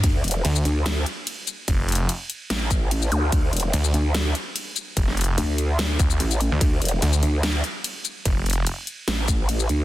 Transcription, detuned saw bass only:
X:1
M:4/4
L:1/16
Q:"Swing 16ths" 1/4=146
K:Dm
V:1 name="Detuned saw bass" clef=bass
z4 D,,2 z8 z2 | F,,,4 z12 | z4 D,,2 z8 z2 | F,,,4 z6 D,,2 z3 D,, |
z4 D,,2 z8 z2 | F,,,4 z12 |]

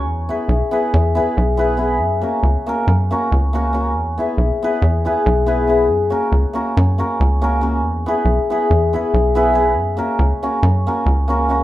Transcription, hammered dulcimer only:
X:1
M:9/8
L:1/8
Q:3/8=93
K:F#mix
V:1 name="Hammered dulcimer"
z [B,EGB] z [B,EGB] z [B,EGB] z [B,EGB] [B,EGB] | z [A,CFA] z [A,CFA] z [A,CFA] z [A,CFA] [A,CFA] | z [B,EGB] z [B,EGB] z [B,EGB] z [B,EGB] [B,EGB] | z [A,CFA] z [A,CFA] z [A,CFA] z [A,CFA] [A,CFA] |
z [B,EGB] z [B,EGB] z [B,EGB] z [B,EGB] [B,EGB] | z [A,CFA] z [A,CFA] z [A,CFA] z [A,CFA] [A,CFA] |]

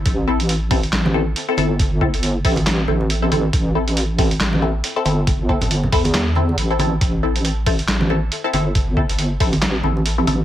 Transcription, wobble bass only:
X:1
M:4/4
L:1/8
Q:"Swing 16ths" 1/4=138
K:Am
V:1 name="Wobble bass" clef=bass
A,,,4 A,,,2 z G,,,- | G,,,3 A,,,2 A,,,2 A,,, | A,,,4 A,,,2 z G,,,- | G,,,3 E,,3 A,,,2 |
A,,,4 A,,,2 z G,,,- | G,,,3 A,,,2 A,,,2 A,,, |]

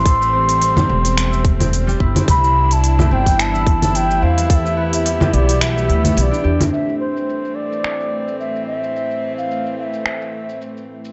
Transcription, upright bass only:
X:1
M:4/4
L:1/8
Q:"Swing 16ths" 1/4=108
K:Am
V:1 name="Upright bass" clef=bass
A,,,3 E,,,4 G,,, | C,,3 G,,,4 E,,- | E,,3 B,,,2 D,, B,,, E,, | z8 |
z8 |]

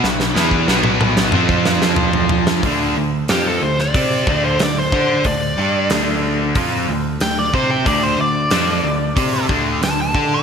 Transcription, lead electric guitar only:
X:1
M:4/4
L:1/16
Q:1/4=92
K:Ddor
V:1 name="Lead electric guitar"
z16 | z4 G A c d4 c d c3 | d4 z8 g d c g | d c d8 z2 a a2 d' |]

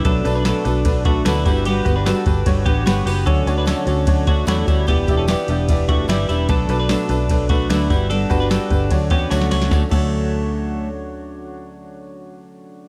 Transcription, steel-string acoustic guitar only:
X:1
M:4/4
L:1/8
Q:1/4=149
K:D
V:1 name="Steel-string acoustic guitar"
[B,,F,A,DF] [A,DF] [B,,F,A,DF] [A,DF] [F,A,DF] [A,DF] [B,,F,A,DF] [B,DF] | [G,B,DF] [B,DF] [G,B,DF] [DF] [G,B,DF] [B,DF] [G,B,DF] [B,DF] | [D,F,A,CF] [A,CF] [D,F,A,CF] [A,CF] [F,A,CF] [A,CF] [D,F,A,CF] [A,CF] | [E,B,DG] [B,DG] [E,B,DG] [B,DG] [E,B,DG] [B,DG] [E,B,DG] [B,DG] |
[B,,F,A,DF] [A,DF] [B,,F,A,DF] [A,DF] [F,A,DF] [A,DF] [B,,F,A,DF] [B,DF] | [G,B,DF] [B,DF] [G,B,DF] [B,DF] [F,A,CF] [A,CF] [D,F,A,CF] [A,CF] | [D,F,A,CF] [D,F,A,CF]6- [D,F,A,CF]- | [D,F,A,CF]8 |]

